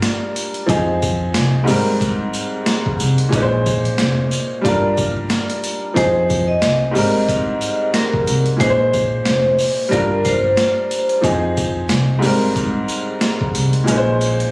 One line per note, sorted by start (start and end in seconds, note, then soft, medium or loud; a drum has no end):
0.00 0.65 G3 medium
0.00 0.66 D4 medium
0.00 0.67 F4 medium
0.00 0.68 A#4 medium
0.00 snare loud
0.00 closed hi-hat medium
0.00 sleigh bells medium
0.36 closed hi-hat medium
0.36 sleigh bells medium
0.54 closed hi-hat medium
0.66 1.25 F2 loud
0.66 1.67 F3 medium
0.66 1.67 C4 medium
0.66 1.68 D#4 medium
0.66 1.68 G#4 medium
0.66 kick loud
0.66 closed hi-hat loud
0.66 sleigh bells medium
1.02 kick loud
1.02 closed hi-hat medium
1.02 sleigh bells medium
1.34 1.63 C2 medium
1.34 snare loud
1.34 closed hi-hat loud
1.34 sleigh bells medium
1.64 3.27 G#2 medium
1.64 3.28 G3 medium
1.64 sleigh bells medium
1.68 2.24 G#1 loud
1.68 3.30 C4 medium
1.68 3.31 A#4 medium
1.68 open hi-hat medium
2.01 kick loud
2.01 closed hi-hat medium
2.01 sleigh bells soft
2.33 closed hi-hat medium
2.33 sleigh bells medium
2.66 snare loud
2.66 closed hi-hat medium
2.66 sleigh bells medium
2.86 kick medium
3.00 3.16 C2 medium
3.00 closed hi-hat medium
3.00 sleigh bells medium
3.18 closed hi-hat medium
3.29 4.60 A#2 medium
3.29 4.61 G#3 medium
3.29 4.62 C#4 medium
3.29 kick loud
3.29 sleigh bells medium
3.33 3.89 A#1 loud
3.33 4.63 D#4 medium
3.33 3.41 B4 medium
3.33 closed hi-hat medium
3.42 4.67 C5 medium
3.66 kick loud
3.66 closed hi-hat medium
3.66 sleigh bells medium
3.85 closed hi-hat medium
3.98 4.27 F1 medium
3.98 snare loud
3.98 closed hi-hat loud
3.98 sleigh bells medium
4.31 closed hi-hat medium
4.31 sleigh bells medium
4.61 5.08 G1 loud
4.61 5.92 G3 medium
4.61 5.93 D4 medium
4.61 kick loud
4.61 sleigh bells soft
4.66 5.95 F4 medium
4.66 5.96 A#4 medium
4.66 closed hi-hat medium
4.97 kick loud
4.97 closed hi-hat medium
4.97 sleigh bells medium
5.17 5.29 G1 medium
5.30 snare loud
5.30 closed hi-hat medium
5.30 sleigh bells medium
5.50 closed hi-hat medium
5.64 closed hi-hat medium
5.64 sleigh bells medium
5.94 6.53 F2 loud
5.94 6.94 F3 medium
5.94 6.94 C4 medium
5.94 6.95 D#4 medium
5.94 6.96 G#4 medium
5.94 6.45 C5 loud
5.94 kick loud
5.94 closed hi-hat loud
5.94 sleigh bells medium
6.30 kick loud
6.30 closed hi-hat medium
6.30 sleigh bells medium
6.48 7.90 D#5 medium
6.62 6.91 C2 medium
6.62 snare loud
6.62 closed hi-hat loud
6.62 sleigh bells medium
6.91 8.55 G#2 medium
6.91 8.56 G3 medium
6.91 sleigh bells medium
6.96 7.52 G#1 loud
6.96 8.57 C4 medium
6.96 8.58 A#4 medium
6.96 open hi-hat medium
7.29 kick loud
7.29 closed hi-hat loud
7.29 sleigh bells soft
7.61 closed hi-hat medium
7.61 sleigh bells medium
7.94 8.24 A#4 medium
7.94 snare loud
7.94 closed hi-hat loud
7.94 sleigh bells medium
8.14 kick medium
8.27 8.43 C2 medium
8.27 closed hi-hat medium
8.27 sleigh bells medium
8.46 closed hi-hat medium
8.57 9.16 A#1 loud
8.57 9.88 A#2 medium
8.57 9.88 G#3 medium
8.57 9.89 C#4 medium
8.57 9.88 C5 loud
8.57 kick loud
8.57 sleigh bells medium
8.61 9.90 D#4 medium
8.61 8.69 B4 medium
8.61 closed hi-hat loud
8.70 9.94 C5 medium
8.93 kick loud
8.93 closed hi-hat medium
8.93 sleigh bells medium
9.25 9.54 F1 medium
9.25 snare loud
9.25 closed hi-hat loud
9.25 sleigh bells medium
9.59 open hi-hat medium
9.59 sleigh bells medium
9.89 10.36 G1 loud
9.89 11.20 G3 medium
9.89 11.21 D4 medium
9.89 10.21 A#4 loud
9.89 kick loud
9.89 closed hi-hat medium
9.89 sleigh bells soft
9.93 11.22 F4 medium
9.93 11.23 A#4 medium
10.25 11.20 C5 medium
10.25 kick medium
10.25 closed hi-hat medium
10.25 sleigh bells medium
10.44 10.56 G1 loud
10.57 snare loud
10.57 closed hi-hat medium
10.57 sleigh bells medium
10.91 closed hi-hat medium
10.91 sleigh bells medium
11.09 closed hi-hat medium
11.21 11.80 F2 loud
11.21 12.21 F3 medium
11.21 12.22 C4 medium
11.21 12.23 D#4 medium
11.21 12.23 G#4 medium
11.21 kick loud
11.21 closed hi-hat loud
11.21 sleigh bells medium
11.57 kick loud
11.57 closed hi-hat medium
11.57 sleigh bells medium
11.89 12.18 C2 medium
11.89 snare loud
11.89 closed hi-hat loud
11.89 sleigh bells medium
12.19 13.82 G#2 medium
12.19 13.83 G3 medium
12.19 sleigh bells medium
12.23 12.79 G#1 loud
12.23 13.85 C4 medium
12.23 13.86 A#4 medium
12.23 open hi-hat medium
12.56 kick loud
12.56 closed hi-hat medium
12.56 sleigh bells soft
12.88 closed hi-hat medium
12.88 sleigh bells medium
13.21 snare loud
13.21 closed hi-hat medium
13.21 sleigh bells medium
13.41 kick medium
13.55 13.70 C2 medium
13.55 closed hi-hat medium
13.55 sleigh bells medium
13.73 closed hi-hat medium
13.84 14.51 A#2 medium
13.84 14.51 G#3 medium
13.84 14.51 C#4 medium
13.84 sleigh bells medium
13.88 14.44 A#1 loud
13.88 14.51 D#4 medium
13.88 13.96 B4 medium
13.88 closed hi-hat loud
13.97 14.51 C5 medium
14.21 closed hi-hat medium
14.21 sleigh bells medium
14.40 closed hi-hat medium